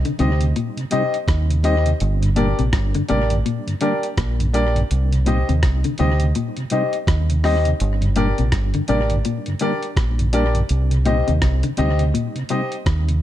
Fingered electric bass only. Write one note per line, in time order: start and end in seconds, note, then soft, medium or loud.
0.20 0.52 D2 medium
1.28 1.93 D#2 medium
2.01 2.53 G1 loud
2.59 2.72 A#1 medium
2.73 2.93 G1 loud
3.11 3.42 A1 medium
4.18 4.83 A#1 loud
4.91 5.43 C2 medium
5.49 5.62 D#2 medium
5.63 5.83 C2 medium
6.00 6.32 D2 medium
7.08 7.72 D#2 medium
7.81 8.32 G1 loud
8.39 8.51 A#1 medium
8.53 8.72 G1 medium
8.89 9.21 A1 medium
9.97 10.61 A#1 medium
10.70 11.22 C2 loud
11.29 11.41 D#2 medium
11.42 11.61 C2 medium
11.79 12.11 D2 medium
12.87 13.22 D#2 medium